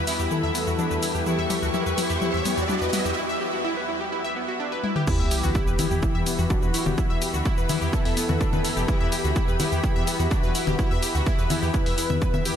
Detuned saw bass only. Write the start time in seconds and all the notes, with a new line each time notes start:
0.20 E2
0.43 E2
0.67 E2
0.91 E2
1.15 E2
1.39 E2
1.62 D2
1.86 E2
2.10 E2
2.34 E2
2.58 E2
2.81 E2
3.05 E2
5.20 E2
5.43 D2
5.67 E2
5.91 E2
6.15 E2
6.39 E2
6.63 E2
6.86 E1
7.10 E2
7.34 D2
7.58 E2
7.82 E2
8.05 E2
8.29 E2
8.53 E2
8.77 E1
9.01 E2
9.24 D2
9.48 E2
9.72 E2
9.96 E2
10.20 E2
10.43 E2
10.67 E1
10.91 E2
11.15 D2
11.39 E2
11.62 E2
11.86 E2
12.10 E2
12.34 E2